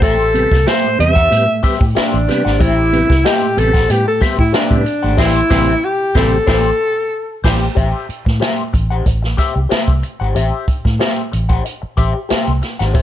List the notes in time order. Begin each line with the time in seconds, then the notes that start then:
0.02 A1 A2 G4 A4 C5 E5, kick, closed hi-hat
0.34 C3 G3 B3, closed hi-hat
0.51 C2 G3 B3, muted clean electric guitar stroke, kick, snare
0.66 G3 B3 G4 C5 E5, snare, closed hi-hat
0.84 A2
0.98 E2 C3 G3 B3 E5, muted clean electric guitar stroke, closed hi-hat
1.15 G4 C5 F#5, kick
1.30 A2 G3 B3, muted clean electric guitar stroke, closed hi-hat
1.48 A2, muted clean electric guitar stroke
1.63 G3 B3 G4 C5 E5, muted fingered electric bass stroke, kick, open hi-hat
1.80 A2, muted clean electric guitar stroke, kick
1.95 D4 G4 C5 E5, muted fingered electric bass stroke, snare, closed hi-hat
2.14 A1
2.28 C3 G3 B3, muted clean electric guitar stroke, snare, closed hi-hat
2.45 G#1 G4 C5 F#5, snare
2.59 A1 A2 E4 G4 C5 E5, kick, closed hi-hat
2.92 C3 G3 B3, closed hi-hat
3.09 C2 G3 B3, muted clean electric guitar stroke, kick, snare
3.24 G3 B3 G4 C5 E5, snare, closed hi-hat
3.42 A2
3.56 A1 C3 G3 B3 A4, muted clean electric guitar stroke, closed hi-hat
3.73 G4 C5 F#5, kick, snare, closed hi-hat
3.89 A2 G3 B3 G4, muted clean electric guitar stroke, closed hi-hat
4.06 A2 A4, muted clean electric guitar stroke
4.21 G3 B3 G4 C5 E5, muted fingered electric bass stroke, kick, snare, open hi-hat
4.38 A2 E4, muted clean electric guitar stroke, kick
4.53 D4 G4 C5 E5, snare, closed hi-hat
4.71 A2 C3 G3 B3, kick
4.85 muted clean electric guitar stroke, closed hi-hat
5.03 G#1 A2 G4 C5 F#5
5.17 A1 E3 G3 C4 E4 G4 C5 E5, kick, snare, crash
5.49 A1 C3 E3 G3 C4 G4 C5 E5, kick, snare
5.85 G4
6.15 A1 C3 E3 G3 C4 G4 A4 C5, kick, snare
6.47 A1 E3 G3 C4 G4 C5, kick, snare
7.44 A1 E3 G3 C4 G4 C5, kick, snare, crash
7.75 A1 G4 C5 E5, kick, closed hi-hat
8.09 muted fingered electric bass stroke, closed hi-hat
8.25 A2, muted clean electric guitar stroke, kick, snare
8.40 G4 C5 E5, snare, closed hi-hat
8.73 A1, muted clean electric guitar stroke, kick, closed hi-hat
8.90 G4 C5 F#5
9.06 A1, muted clean electric guitar stroke, kick, closed hi-hat
9.22 muted clean electric guitar stroke, snare
9.37 G4 C5 E5, kick, snare, closed hi-hat
9.55 C2, muted clean electric guitar stroke
9.69 G4 C5 E5, muted fingered electric bass stroke, snare, closed hi-hat
9.88 C2, kick
10.03 muted clean electric guitar stroke, closed hi-hat
10.20 G#1 G4 C5 F#5
10.35 A1 G4 C5 E5, closed hi-hat
10.68 muted fingered electric bass stroke, kick, closed hi-hat
10.85 A2, muted clean electric guitar stroke, kick, snare
10.99 G4 C5 E5, snare, closed hi-hat
11.32 A1, muted clean electric guitar stroke, closed hi-hat
11.49 G4 C5 F#5, kick, closed hi-hat
11.65 muted clean electric guitar stroke, closed hi-hat
11.82 muted clean electric guitar stroke, muted fingered electric bass stroke
11.97 A1 G4 C5 E5, kick, closed hi-hat
12.15 muted clean electric guitar stroke
12.29 G4 C5 E5, muted fingered electric bass stroke, snare, closed hi-hat
12.48 C2
12.62 muted clean electric guitar stroke, snare, closed hi-hat
12.79 G#1 G4 C5 F#5, snare, closed hi-hat
12.93 A1 G4 C5 E5, kick, closed hi-hat